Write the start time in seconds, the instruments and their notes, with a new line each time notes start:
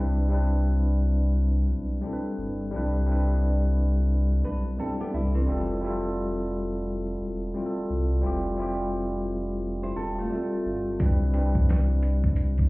Already playing: sub bass C2, tine electric piano G3 C4
0.00 tine electric piano D4 E4 B4
0.29 tine electric piano G3 C4 D4 E4
0.34 tine electric piano B4
1.69 sub bass B1
2.02 tine electric piano G3 C4 D4 E4
2.06 tine electric piano A4
2.13 tine electric piano B4
2.38 sub bass G1
2.71 sub bass C2, tine electric piano G3 C4 D4 E4
2.76 tine electric piano B4
3.06 tine electric piano G3 C4 D4
3.10 tine electric piano E4 B4
4.44 sub bass B1, nylon-string guitar D4 B4
4.79 tine electric piano G3 C4 D4 E4, nylon-string guitar C4 A4
4.84 tine electric piano A4
5.00 nylon-string guitar B3 G4
5.14 sub bass C2, nylon-string guitar G3 E4
5.34 nylon-string guitar E3 C4
5.46 sub bass F1, tine electric piano G3 C4 E4 F4
5.52 tine electric piano A4
5.81 tine electric piano G3 C4 E4
5.86 tine electric piano F4 A4
7.21 sub bass E1
7.54 tine electric piano G3 C4 E4
7.58 tine electric piano F4 G4
7.66 tine electric piano A4
7.90 sub bass C2
8.21 sub bass F1, tine electric piano G3 C4 E4 F4
8.26 tine electric piano G4
8.56 tine electric piano G3 C4 E4 F4
8.62 tine electric piano G4
9.83 nylon-string guitar E4 C5
9.96 sub bass E1, nylon-string guitar C4 A4
10.18 nylon-string guitar A3 F4
10.30 tine electric piano G3 C4 F4 E5
10.35 tine electric piano A4
10.66 sub bass G1
11.00 sub bass C2, tine electric piano G3 C4 D4, kick, closed hi-hat
11.04 tine electric piano E4 B4
11.34 tine electric piano G3 C4 D4 E4, closed hi-hat
11.39 tine electric piano B4
11.55 kick
11.69 snare, closed hi-hat
12.03 closed hi-hat
12.24 kick
12.36 closed hi-hat
12.58 kick, closed hi-hat